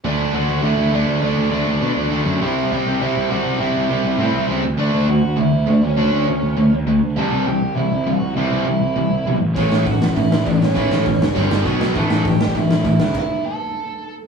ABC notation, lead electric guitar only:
X:1
M:4/4
L:1/8
Q:1/4=201
K:D
V:1 name="Lead electric guitar"
[Dd]2 [Ff]2 [Ee]2 [Dd]2 | [Dd]6 z2 | [Ee]2 [Gg]2 [Ee]2 [Ff]2 | [Ee]6 z2 |
[Dd]2 [Ff]2 [Ee]2 [Dd] [Cc]- | [Cc]4- [Cc] z3 | [Aa]2 [Gg]2 [Ee]2 [Ff]2 | [Ee]2 [Ee]4- [Ee] z |
[Cc]2 [Ff]2 [Ee]2 [Dd] [Cc]- | [Cc]4- [Cc] z3 | [Aa]2 [Gg]2 [Ee]2 [Ee]2 | [Ee]2 [Aa]4- [Aa] z |]